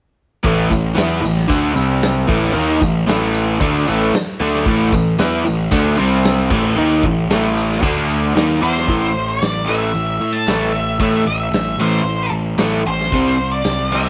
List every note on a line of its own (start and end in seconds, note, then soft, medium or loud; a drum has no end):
0.44 0.69 A1 medium
0.44 0.69 A2 loud
0.44 0.70 E3 loud
0.44 0.71 A3 loud
0.44 kick loud
0.44 open hi-hat medium
0.70 0.95 A1 medium
0.70 0.92 A2 medium
0.70 0.92 E3 medium
0.70 kick medium
0.70 open hi-hat medium
0.70 tambourine medium
0.95 1.21 E2 medium
0.95 1.21 E3 medium
0.95 1.22 B3 medium
0.95 1.23 E4 loud
0.95 snare loud
0.95 open hi-hat medium
0.95 tambourine loud
1.22 1.47 A1 medium
1.22 1.44 A2 medium
1.22 1.45 E3 medium
1.22 open hi-hat medium
1.22 tambourine medium
1.37 snare soft
1.48 1.74 D2 loud
1.48 1.74 D3 medium
1.48 1.75 A3 medium
1.48 1.76 D4 loud
1.48 kick loud
1.48 open hi-hat medium
1.48 tambourine medium
1.74 2.25 C2 loud
1.74 2.27 C3 loud
1.74 2.28 G3 medium
1.74 2.28 C4 medium
1.74 open hi-hat medium
1.74 tambourine medium
2.02 snare loud
2.02 open hi-hat medium
2.02 tambourine loud
2.28 2.54 A1 medium
2.28 2.53 A2 loud
2.28 2.54 E3 loud
2.28 2.55 A3 loud
2.28 kick loud
2.28 open hi-hat medium
2.44 snare soft
2.54 2.79 D#2 medium
2.54 2.80 D#3 loud
2.54 2.81 A#3 loud
2.54 2.81 D#4 loud
2.54 open hi-hat medium
2.81 3.06 A1 medium
2.81 3.03 A2 medium
2.81 3.03 E3 medium
2.81 kick medium
2.81 open hi-hat medium
2.81 tambourine medium
3.07 3.57 A1 medium
3.07 3.59 A2 medium
3.07 3.60 E3 loud
3.07 3.60 A3 loud
3.07 snare loud
3.07 open hi-hat medium
3.07 tambourine loud
3.34 open hi-hat medium
3.34 tambourine medium
3.60 3.85 D2 loud
3.60 3.86 D3 medium
3.60 3.87 A3 loud
3.60 3.87 D4 loud
3.60 kick loud
3.60 open hi-hat medium
3.60 tambourine medium
3.87 4.12 A1 medium
3.87 4.13 A2 medium
3.87 4.13 E3 medium
3.87 4.13 A3 loud
3.87 open hi-hat medium
3.87 tambourine medium
4.13 muted picked electric bass stroke soft
4.13 muted overdriven electric guitar stroke medium
4.13 snare loud
4.13 open hi-hat medium
4.13 tambourine medium
4.40 4.65 D2 loud
4.40 4.66 D3 medium
4.40 4.66 A3 medium
4.40 4.66 D4 loud
4.40 open hi-hat medium
4.54 snare soft
4.65 4.91 A1 medium
4.65 4.92 A2 loud
4.65 4.93 E3 loud
4.65 4.93 A3 loud
4.65 kick loud
4.65 open hi-hat medium
4.92 5.17 A1 medium
4.92 5.15 A2 medium
4.92 5.15 E3 medium
4.92 kick medium
4.92 open hi-hat medium
4.92 tambourine medium
5.19 5.44 E2 loud
5.19 5.44 E3 medium
5.19 5.45 B3 loud
5.19 5.45 E4 loud
5.19 snare loud
5.19 open hi-hat medium
5.19 tambourine medium
5.45 5.71 A1 medium
5.45 5.67 A2 medium
5.45 5.67 E3 medium
5.45 open hi-hat medium
5.45 tambourine medium
5.72 5.96 D2 loud
5.72 5.97 D3 medium
5.72 5.98 A3 loud
5.72 5.98 D4 loud
5.72 kick loud
5.72 open hi-hat medium
5.72 tambourine medium
5.98 6.48 C2 loud
5.98 6.50 C3 medium
5.98 6.50 G3 medium
5.98 6.51 C4 loud
5.98 open hi-hat medium
5.98 tambourine medium
6.24 snare loud
6.24 open hi-hat medium
6.24 tambourine medium
6.50 6.75 A1 medium
6.50 6.76 A2 loud
6.50 6.77 E3 medium
6.50 6.78 A3 loud
6.50 kick loud
6.50 crash loud
6.76 7.02 D#2 medium
6.76 7.03 D#3 loud
6.76 7.03 A#3 loud
6.76 7.03 D#4 loud
6.76 tambourine soft
7.03 7.28 A1 medium
7.03 7.26 A2 medium
7.03 7.26 E3 medium
7.03 kick medium
7.03 open hi-hat medium
7.30 7.79 A1 loud
7.30 7.83 A2 loud
7.30 7.84 E3 loud
7.30 7.84 A3 medium
7.30 snare loud
7.30 open hi-hat medium
7.30 tambourine medium
7.57 open hi-hat medium
7.57 tambourine medium
7.72 snare soft
7.83 8.32 D2 loud
7.83 8.35 D3 medium
7.83 8.36 A3 medium
7.83 8.36 D4 loud
7.83 kick loud
7.83 open hi-hat medium
7.83 tambourine medium
8.10 open hi-hat medium
8.10 tambourine medium
8.35 8.60 D#2 loud
8.35 8.61 D#3 medium
8.35 8.62 A#3 medium
8.35 8.63 D#4 loud
8.35 snare loud
8.35 open hi-hat medium
8.35 tambourine loud
8.62 8.87 E2 loud
8.62 8.88 E3 medium
8.62 8.89 B3 medium
8.62 8.89 E4 loud
8.62 9.31 C5 medium
8.62 open hi-hat medium
8.62 tambourine soft
8.77 snare soft
8.88 9.39 A1 medium
8.88 9.10 A2 medium
8.88 9.11 E3 medium
8.88 9.11 A3 loud
8.88 kick loud
8.88 open hi-hat medium
9.15 open hi-hat medium
9.29 9.66 D5 medium
9.42 9.92 A1 medium
9.42 snare loud
9.42 open hi-hat medium
9.42 tambourine medium
9.66 9.90 A2 medium
9.66 9.90 E3 loud
9.66 9.90 A3 loud
9.66 10.36 E5 loud
9.66 open hi-hat medium
9.95 10.19 A1 medium
9.95 open hi-hat medium
10.20 10.46 A2 loud
10.20 open hi-hat medium
10.33 10.75 A5 loud
10.47 10.98 A1 medium
10.47 10.70 A2 medium
10.47 10.70 E3 medium
10.47 10.71 A3 loud
10.47 snare loud
10.47 open hi-hat medium
10.47 tambourine medium
10.72 11.00 E5 loud
10.72 open hi-hat medium
10.99 11.25 A2 medium
10.99 11.22 A2 medium
10.99 11.23 E3 medium
10.99 11.23 A3 loud
10.99 11.26 E5 loud
10.99 kick loud
10.99 open hi-hat medium
11.26 11.50 A1 medium
11.26 11.83 E5 medium
11.26 open hi-hat medium
11.51 11.76 A1 medium
11.51 snare loud
11.51 open hi-hat medium
11.51 tambourine medium
11.77 12.03 A1 medium
11.77 12.02 A2 loud
11.77 12.30 C5 medium
11.77 open hi-hat medium
11.81 12.03 E3 loud
11.81 12.03 A3 loud
12.03 12.30 A1 medium
12.03 open hi-hat medium
12.31 12.56 A1 medium
12.31 open hi-hat medium
12.57 12.84 A1 medium
12.57 12.81 A2 medium
12.57 12.82 E3 loud
12.57 12.82 A3 loud
12.57 snare loud
12.57 open hi-hat medium
12.57 tambourine medium
12.85 13.11 A1 medium
12.85 13.56 C5 medium
12.85 open hi-hat medium
13.00 snare soft
13.12 13.63 C2 medium
13.12 13.35 C3 medium
13.12 13.35 G3 loud
13.12 13.36 C4 loud
13.12 kick loud
13.12 open hi-hat medium
13.38 open hi-hat medium
13.52 13.92 D5 medium
13.64 14.09 C2 medium
13.64 snare loud
13.64 open hi-hat medium
13.64 tambourine loud
13.91 14.09 C3 loud
13.91 14.09 G3 medium
13.91 14.09 E5 medium
13.91 open hi-hat medium
13.95 14.09 C4 loud